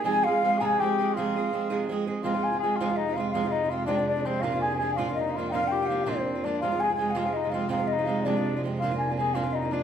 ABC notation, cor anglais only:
X:1
M:6/8
L:1/16
Q:3/8=110
K:Fdor
V:1 name="Cor anglais"
A2 F4 A2 G4 | F8 z4 | F4 A2 F2 E2 F2 | F2 E2 F2 D2 D2 C2 |
F2 A2 A2 F2 E2 F3/2 E/2 | F2 G4 C4 D2 | F2 A2 A2 F2 E2 F2 | F2 E4 D4 z2 |
F2 z2 A2 F2 E2 D2 |]